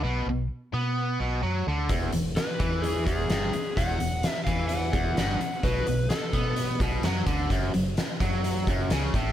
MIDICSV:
0, 0, Header, 1, 6, 480
1, 0, Start_track
1, 0, Tempo, 466563
1, 43, Time_signature, 4, 2, 24, 8
1, 9592, End_track
2, 0, Start_track
2, 0, Title_t, "Electric slide guitar"
2, 0, Program_c, 0, 29
2, 2431, Note_on_c, 0, 71, 83
2, 2901, Note_on_c, 0, 68, 83
2, 2931, Note_off_c, 0, 71, 0
2, 3138, Note_off_c, 0, 68, 0
2, 3151, Note_on_c, 0, 68, 77
2, 3879, Note_on_c, 0, 78, 100
2, 3898, Note_off_c, 0, 68, 0
2, 4434, Note_off_c, 0, 78, 0
2, 4434, Note_on_c, 0, 76, 100
2, 4568, Note_off_c, 0, 76, 0
2, 4573, Note_on_c, 0, 77, 86
2, 4809, Note_off_c, 0, 77, 0
2, 4815, Note_on_c, 0, 78, 98
2, 5803, Note_on_c, 0, 71, 92
2, 5818, Note_off_c, 0, 78, 0
2, 6249, Note_off_c, 0, 71, 0
2, 6268, Note_on_c, 0, 69, 73
2, 6721, Note_off_c, 0, 69, 0
2, 9592, End_track
3, 0, Start_track
3, 0, Title_t, "Overdriven electric guitar"
3, 0, Program_c, 1, 29
3, 38, Note_on_c, 1, 47, 92
3, 273, Note_off_c, 1, 47, 0
3, 299, Note_on_c, 1, 47, 67
3, 483, Note_off_c, 1, 47, 0
3, 758, Note_on_c, 1, 59, 87
3, 1231, Note_on_c, 1, 47, 83
3, 1233, Note_off_c, 1, 59, 0
3, 1464, Note_off_c, 1, 47, 0
3, 1469, Note_on_c, 1, 54, 86
3, 1708, Note_off_c, 1, 54, 0
3, 1728, Note_on_c, 1, 50, 86
3, 1949, Note_on_c, 1, 40, 93
3, 1957, Note_off_c, 1, 50, 0
3, 2175, Note_off_c, 1, 40, 0
3, 2187, Note_on_c, 1, 40, 66
3, 2386, Note_off_c, 1, 40, 0
3, 2673, Note_on_c, 1, 52, 92
3, 3148, Note_on_c, 1, 40, 86
3, 3150, Note_off_c, 1, 52, 0
3, 3387, Note_off_c, 1, 40, 0
3, 3402, Note_on_c, 1, 43, 85
3, 3634, Note_off_c, 1, 43, 0
3, 3888, Note_on_c, 1, 40, 98
3, 4107, Note_off_c, 1, 40, 0
3, 4120, Note_on_c, 1, 40, 65
3, 4312, Note_off_c, 1, 40, 0
3, 4603, Note_on_c, 1, 52, 94
3, 5075, Note_off_c, 1, 52, 0
3, 5075, Note_on_c, 1, 40, 89
3, 5311, Note_off_c, 1, 40, 0
3, 5331, Note_on_c, 1, 43, 89
3, 5559, Note_off_c, 1, 43, 0
3, 5805, Note_on_c, 1, 47, 94
3, 6033, Note_off_c, 1, 47, 0
3, 6045, Note_on_c, 1, 47, 63
3, 6236, Note_off_c, 1, 47, 0
3, 6520, Note_on_c, 1, 59, 95
3, 6994, Note_off_c, 1, 59, 0
3, 7004, Note_on_c, 1, 47, 93
3, 7236, Note_off_c, 1, 47, 0
3, 7251, Note_on_c, 1, 54, 87
3, 7474, Note_off_c, 1, 54, 0
3, 7478, Note_on_c, 1, 50, 88
3, 7713, Note_off_c, 1, 50, 0
3, 7722, Note_on_c, 1, 42, 93
3, 7949, Note_off_c, 1, 42, 0
3, 7961, Note_on_c, 1, 42, 62
3, 8154, Note_off_c, 1, 42, 0
3, 8442, Note_on_c, 1, 54, 95
3, 8916, Note_off_c, 1, 54, 0
3, 8933, Note_on_c, 1, 42, 83
3, 9161, Note_off_c, 1, 42, 0
3, 9174, Note_on_c, 1, 49, 89
3, 9401, Note_off_c, 1, 49, 0
3, 9416, Note_on_c, 1, 45, 88
3, 9592, Note_off_c, 1, 45, 0
3, 9592, End_track
4, 0, Start_track
4, 0, Title_t, "Fingered electric bass"
4, 0, Program_c, 2, 33
4, 41, Note_on_c, 2, 35, 84
4, 265, Note_off_c, 2, 35, 0
4, 271, Note_on_c, 2, 35, 73
4, 499, Note_off_c, 2, 35, 0
4, 753, Note_on_c, 2, 47, 90
4, 1203, Note_off_c, 2, 47, 0
4, 1236, Note_on_c, 2, 35, 83
4, 1462, Note_off_c, 2, 35, 0
4, 1473, Note_on_c, 2, 42, 84
4, 1700, Note_off_c, 2, 42, 0
4, 1718, Note_on_c, 2, 38, 83
4, 1939, Note_off_c, 2, 38, 0
4, 1946, Note_on_c, 2, 28, 86
4, 2176, Note_off_c, 2, 28, 0
4, 2193, Note_on_c, 2, 28, 70
4, 2420, Note_off_c, 2, 28, 0
4, 2678, Note_on_c, 2, 40, 89
4, 3126, Note_off_c, 2, 40, 0
4, 3157, Note_on_c, 2, 28, 85
4, 3382, Note_off_c, 2, 28, 0
4, 3393, Note_on_c, 2, 31, 87
4, 3620, Note_off_c, 2, 31, 0
4, 3877, Note_on_c, 2, 28, 87
4, 4102, Note_off_c, 2, 28, 0
4, 4135, Note_on_c, 2, 28, 71
4, 4352, Note_off_c, 2, 28, 0
4, 4591, Note_on_c, 2, 40, 92
4, 5042, Note_off_c, 2, 40, 0
4, 5083, Note_on_c, 2, 28, 89
4, 5305, Note_off_c, 2, 28, 0
4, 5328, Note_on_c, 2, 31, 82
4, 5548, Note_off_c, 2, 31, 0
4, 5802, Note_on_c, 2, 35, 86
4, 6025, Note_off_c, 2, 35, 0
4, 6045, Note_on_c, 2, 35, 67
4, 6267, Note_off_c, 2, 35, 0
4, 6515, Note_on_c, 2, 47, 87
4, 6965, Note_off_c, 2, 47, 0
4, 7002, Note_on_c, 2, 35, 86
4, 7225, Note_off_c, 2, 35, 0
4, 7251, Note_on_c, 2, 42, 89
4, 7470, Note_off_c, 2, 42, 0
4, 7475, Note_on_c, 2, 38, 88
4, 7702, Note_off_c, 2, 38, 0
4, 7720, Note_on_c, 2, 30, 87
4, 7944, Note_off_c, 2, 30, 0
4, 7969, Note_on_c, 2, 30, 72
4, 8189, Note_off_c, 2, 30, 0
4, 8447, Note_on_c, 2, 42, 90
4, 8892, Note_off_c, 2, 42, 0
4, 8927, Note_on_c, 2, 30, 88
4, 9149, Note_off_c, 2, 30, 0
4, 9175, Note_on_c, 2, 37, 87
4, 9393, Note_off_c, 2, 37, 0
4, 9405, Note_on_c, 2, 33, 79
4, 9592, Note_off_c, 2, 33, 0
4, 9592, End_track
5, 0, Start_track
5, 0, Title_t, "Muted overdriven electric guitar strokes"
5, 3651, Note_on_c, 9, 29, 54
5, 3754, Note_off_c, 9, 29, 0
5, 5569, Note_on_c, 9, 29, 54
5, 5672, Note_off_c, 9, 29, 0
5, 9592, End_track
6, 0, Start_track
6, 0, Title_t, "Drums"
6, 1947, Note_on_c, 9, 42, 69
6, 1950, Note_on_c, 9, 36, 95
6, 2050, Note_off_c, 9, 42, 0
6, 2053, Note_off_c, 9, 36, 0
6, 2186, Note_on_c, 9, 42, 57
6, 2289, Note_off_c, 9, 42, 0
6, 2431, Note_on_c, 9, 42, 75
6, 2438, Note_on_c, 9, 38, 107
6, 2534, Note_off_c, 9, 42, 0
6, 2541, Note_off_c, 9, 38, 0
6, 2673, Note_on_c, 9, 42, 57
6, 2675, Note_on_c, 9, 36, 94
6, 2776, Note_off_c, 9, 42, 0
6, 2777, Note_off_c, 9, 36, 0
6, 2918, Note_on_c, 9, 42, 75
6, 3021, Note_off_c, 9, 42, 0
6, 3154, Note_on_c, 9, 42, 56
6, 3155, Note_on_c, 9, 36, 89
6, 3257, Note_off_c, 9, 36, 0
6, 3257, Note_off_c, 9, 42, 0
6, 3391, Note_on_c, 9, 42, 77
6, 3399, Note_on_c, 9, 38, 108
6, 3494, Note_off_c, 9, 42, 0
6, 3502, Note_off_c, 9, 38, 0
6, 3636, Note_on_c, 9, 42, 58
6, 3738, Note_off_c, 9, 42, 0
6, 3878, Note_on_c, 9, 36, 90
6, 3884, Note_on_c, 9, 42, 73
6, 3981, Note_off_c, 9, 36, 0
6, 3987, Note_off_c, 9, 42, 0
6, 4117, Note_on_c, 9, 42, 59
6, 4220, Note_off_c, 9, 42, 0
6, 4355, Note_on_c, 9, 42, 82
6, 4362, Note_on_c, 9, 38, 103
6, 4458, Note_off_c, 9, 42, 0
6, 4465, Note_off_c, 9, 38, 0
6, 4595, Note_on_c, 9, 36, 92
6, 4596, Note_on_c, 9, 42, 60
6, 4698, Note_off_c, 9, 36, 0
6, 4699, Note_off_c, 9, 42, 0
6, 4825, Note_on_c, 9, 42, 77
6, 4928, Note_off_c, 9, 42, 0
6, 5074, Note_on_c, 9, 42, 55
6, 5076, Note_on_c, 9, 36, 97
6, 5177, Note_off_c, 9, 42, 0
6, 5178, Note_off_c, 9, 36, 0
6, 5320, Note_on_c, 9, 42, 73
6, 5328, Note_on_c, 9, 38, 106
6, 5423, Note_off_c, 9, 42, 0
6, 5430, Note_off_c, 9, 38, 0
6, 5563, Note_on_c, 9, 42, 53
6, 5666, Note_off_c, 9, 42, 0
6, 5797, Note_on_c, 9, 36, 93
6, 5798, Note_on_c, 9, 42, 65
6, 5899, Note_off_c, 9, 36, 0
6, 5901, Note_off_c, 9, 42, 0
6, 6036, Note_on_c, 9, 42, 54
6, 6139, Note_off_c, 9, 42, 0
6, 6274, Note_on_c, 9, 42, 78
6, 6281, Note_on_c, 9, 38, 101
6, 6377, Note_off_c, 9, 42, 0
6, 6384, Note_off_c, 9, 38, 0
6, 6516, Note_on_c, 9, 36, 101
6, 6517, Note_on_c, 9, 42, 55
6, 6619, Note_off_c, 9, 36, 0
6, 6620, Note_off_c, 9, 42, 0
6, 6752, Note_on_c, 9, 42, 76
6, 6855, Note_off_c, 9, 42, 0
6, 6997, Note_on_c, 9, 36, 93
6, 7001, Note_on_c, 9, 42, 55
6, 7100, Note_off_c, 9, 36, 0
6, 7104, Note_off_c, 9, 42, 0
6, 7234, Note_on_c, 9, 42, 78
6, 7242, Note_on_c, 9, 38, 101
6, 7337, Note_off_c, 9, 42, 0
6, 7345, Note_off_c, 9, 38, 0
6, 7476, Note_on_c, 9, 36, 96
6, 7476, Note_on_c, 9, 42, 61
6, 7578, Note_off_c, 9, 36, 0
6, 7579, Note_off_c, 9, 42, 0
6, 7718, Note_on_c, 9, 36, 94
6, 7721, Note_on_c, 9, 42, 79
6, 7821, Note_off_c, 9, 36, 0
6, 7824, Note_off_c, 9, 42, 0
6, 7961, Note_on_c, 9, 42, 58
6, 8064, Note_off_c, 9, 42, 0
6, 8202, Note_on_c, 9, 42, 82
6, 8209, Note_on_c, 9, 38, 104
6, 8304, Note_off_c, 9, 42, 0
6, 8312, Note_off_c, 9, 38, 0
6, 8441, Note_on_c, 9, 36, 96
6, 8441, Note_on_c, 9, 42, 62
6, 8544, Note_off_c, 9, 36, 0
6, 8544, Note_off_c, 9, 42, 0
6, 8685, Note_on_c, 9, 42, 74
6, 8787, Note_off_c, 9, 42, 0
6, 8923, Note_on_c, 9, 36, 99
6, 8928, Note_on_c, 9, 42, 57
6, 9025, Note_off_c, 9, 36, 0
6, 9031, Note_off_c, 9, 42, 0
6, 9159, Note_on_c, 9, 42, 75
6, 9167, Note_on_c, 9, 38, 103
6, 9262, Note_off_c, 9, 42, 0
6, 9269, Note_off_c, 9, 38, 0
6, 9403, Note_on_c, 9, 36, 91
6, 9407, Note_on_c, 9, 42, 55
6, 9505, Note_off_c, 9, 36, 0
6, 9510, Note_off_c, 9, 42, 0
6, 9592, End_track
0, 0, End_of_file